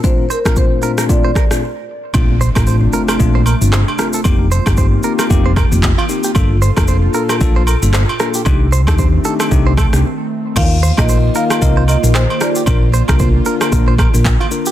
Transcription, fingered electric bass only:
X:1
M:4/4
L:1/16
Q:"Swing 16ths" 1/4=114
K:Bb
V:1 name="Fingered electric bass" clef=bass
z16 | B,,,3 A,,,3 z2 B,,,3 G,,,2 z3 | F,,,3 G,,,3 z2 F,,,3 F,,,2 z3 | G,,,3 F,,,3 z2 B,,,3 G,,,2 z3 |
C,,3 E,,3 z2 C,,3 C,, z4 | E,,3 B,,,3 z2 C,,3 B,,,2 z3 | B,,,3 C,,3 z2 B,,,3 B,,,2 z3 |]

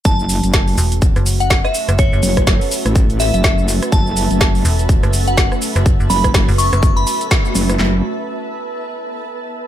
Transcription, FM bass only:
X:1
M:4/4
L:1/16
Q:"Swing 16ths" 1/4=124
K:F#m
V:1 name="FM bass" clef=bass
z6 E,,,3 F,,,4 z2 F,,,- | F,,, F,,, z12 z2 | z6 E,,,3 F,,,4 z2 F,,,- | F,,, F,,, z3 F,,,2 F,,,3 z6 |
z16 |]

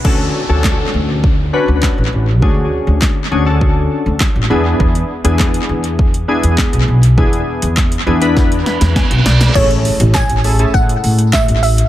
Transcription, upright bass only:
X:1
M:4/4
L:1/16
Q:1/4=101
K:Dlyd
V:1 name="Upright bass" clef=bass
D,,2 z D,,3 D,,4- D,, D,,2 A,,, A,,,2 | D,,2 z D,,3 D,,4- D,, D,,2 A,,, E,,2 | E,,2 z E,,3 E,,4- E,, E,,2 B,,, B,,,2 | E,,2 z E,,3 E,,4- E,, E,,2 B,,, B,,,2 |
A,,,3 A,,,2 A,,,3 A,,2 A,,3 A,,,3 |]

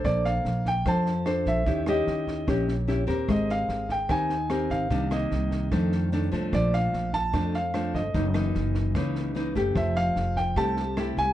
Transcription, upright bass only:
X:1
M:4/4
L:1/8
Q:1/4=148
K:Bb
V:1 name="Upright bass" clef=bass
B,,,2 B,,,2 F,,3 B,,, | E,,2 E,,2 B,,,3 E,, | _A,,,2 A,,,2 E,,3 A,,, | C,,2 C,,2 F,,3 C,, |
B,,,2 B,,,2 F,,3 G,,, | ^F,,,2 F,,,2 ^C,,3 F,,, | F,,,2 F,,,2 C,,3 C,, |]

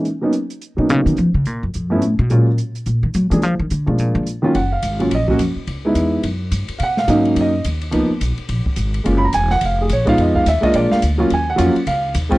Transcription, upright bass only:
X:1
M:4/4
L:1/8
Q:"Swing" 1/4=213
K:Ebm
V:1 name="Upright bass" clef=bass
z4 z =B,, D, ^D, | F, D, B,, G,, F,, =G,, =A,, C, | B,,2 z2 B,, E, G, _F, | F, E, =D, C, B,, D, z2 |
G,,,2 A,,,2 B,,,2 F,, z | D,,2 _F,,2 G,,2 =G,, z | =B,,2 A,,2 ^F,,2 ^D,,2 | D,, z C,, z B,,, z A,,,2 |
G,,,2 _F,,,2 =F,,,2 B,,,2 | F,,2 E,, z B,,, z =D,,2 | E,,2 F,, z D,,2 E,,2 |]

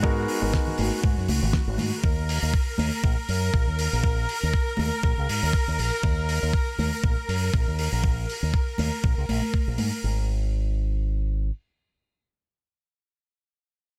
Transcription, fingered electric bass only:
X:1
M:4/4
L:1/16
Q:"Swing 16ths" 1/4=120
K:D#phr
V:1 name="Fingered electric bass" clef=bass
G,,2 z G,,, z2 G,,, z G,, F,, C,, G,,, z G,,, G,, z | D,,3 D,, z2 D,, z A,,, z F,,2 A,,, D,,2 A,,,- | A,,,2 z D,, z2 D,, z A,,, C,, G,, D,, z D,, A,,, z | D,,3 D,, z2 D,, z A,,, z F,,2 A,,, D,,2 A,,,- |
A,,,2 z D,, z2 D,, z A,,, C,, A,,, z2 A,,, G,, z | G,,,12 z4 | z16 |]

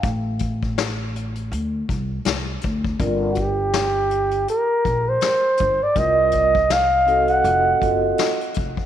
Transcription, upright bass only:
X:1
M:4/4
L:1/16
Q:"Swing 16ths" 1/4=81
K:Cmix
V:1 name="Upright bass" clef=bass
A,,,8 D,,2 C,,2 C,,2 D,,2 | G,,,8 z2 B,,,2 z2 G,,, z | C,,8 F,,,2 _G,,,2 z2 F,,, z |]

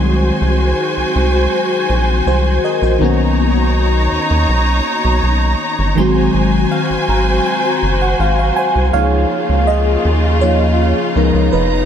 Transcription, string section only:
X:1
M:4/4
L:1/8
Q:1/4=81
K:Abmix
V:1 name="String section"
[Gca]8 | [Edb]8 | [Gca]8 | [K:Dbmix] [D,B,F]6 [CEb]2 |]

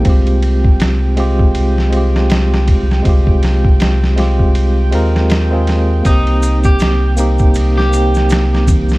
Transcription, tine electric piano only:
X:1
M:4/4
L:1/16
Q:"Swing 16ths" 1/4=80
K:Fdor
V:1 name="Tine electric piano"
[A,CFG]6 [A,CFG]4 [A,CFG]6 | [A,CFG]6 [A,CFG] z3 [A,CFB] z2 [A,CFA]3 | [B,CEG]6 [B,CEG]4 [B,CEG]6 |]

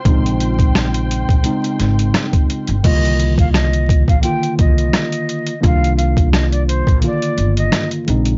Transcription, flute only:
X:1
M:4/4
L:1/16
Q:"Swing 16ths" 1/4=86
K:Cm
V:1 name="Flute"
z16 | e3 f e3 f g2 e6 | f2 f2 e d c2 d3 e2 z3 |]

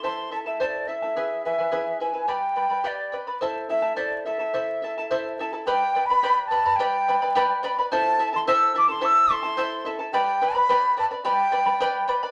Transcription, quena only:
X:1
M:2/4
L:1/16
Q:1/4=107
K:Gmix
V:1 name="Quena"
c'2 a e d2 e2- | e2 e4 ^g2 | g4 d2 z2 | z2 e2 d2 e2- |
e6 z2 | g3 b3 a2 | g6 z2 | a3 c' e'2 d' c' |
e'2 c'4 z2 | g3 b3 a2 | g6 z2 |]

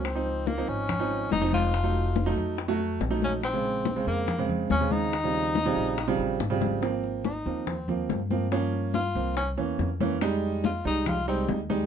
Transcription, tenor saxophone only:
X:1
M:4/4
L:1/8
Q:1/4=142
K:Ab
V:1 name="Tenor saxophone"
C2 B, D3 E F- | F3 z4 D | C3 B,2 z D E- | E6 z2 |
z2 E2 C z3 | z2 F2 D z3 | z2 F E F C z2 |]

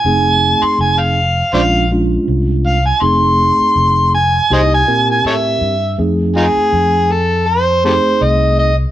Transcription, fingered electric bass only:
X:1
M:4/4
L:1/16
Q:"Swing 16ths" 1/4=81
K:Cdor
V:1 name="Fingered electric bass" clef=bass
F,,,3 z F,,,4 B,,,4 C,,4 | F,,,3 z F,,,4 C,,2 B,,2 A,,2 G,,2 | F,,3 z F,,8 C,,4 |]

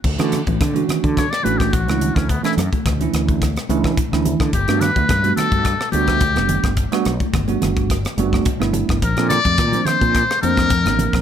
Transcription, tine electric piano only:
X:1
M:4/4
L:1/16
Q:1/4=107
K:D
V:1 name="Tine electric piano"
z [E,A,CDF] z [DF] z [E,A,CDF]3 z2 [E,A,CDF]2 z [E,A,CDE]3 | z [E,A,CDA] z [DA] z [E,A,CDE]3 z2 [E,A,CDE]2 z [E,A,CDE]3 | z [G,A,B,DF] z F z [G,A,B,DF]3 z2 [G,A,B,DF]2 z [G,A,B,DG]3 | z [G,A,B,DF] z [DE] z [G,A,B,DF]3 z2 [G,A,B,DF]2 z [G,A,B,DE]3 |
z [=F,_B,=CDA] z [D_B] z [F,B,CD=c]3 z2 [F,B,CDc]2 z [F,B,CDB]3 |]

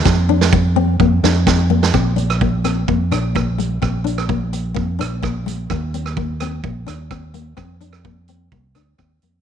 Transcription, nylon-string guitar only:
X:1
M:4/4
L:1/8
Q:1/4=128
K:Bb
V:1 name="Nylon-string guitar"
C D z C B, D C B, | C D B, C B, D B, A, | C D B, z B, D B, A, | B, C B, C B, D C B, |
C D B, C B, D C B, |]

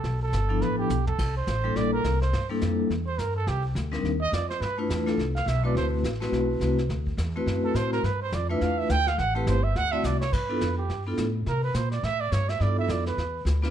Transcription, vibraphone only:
X:1
M:4/4
L:1/8
Q:"Swing" 1/4=210
K:Gmix
V:1 name="Vibraphone"
z3 [F,B,DEA]3 z2 | z3 [G,_B,DEA]3 z2 | z [G,_B,DEA]3 z4 | z3 [G,CD_E_B] z4 |
z [A,DEFB]2 [A,DEFA] z3 [A,CE^FB]- | [A,CE^FB]2 z [A,CEFB]3 [A,CEFB] z | z3 [A,CE^FB]3 [A,CEFc] z | z3 [A,DEFB]3 z2 |
z [A,CEGB] z3 [A,CE^Fd] z2 | z [B,DEFA] z3 [B,DEFA] z2 | z8 | [B,DEFA]3 z4 [B,DEFB] |]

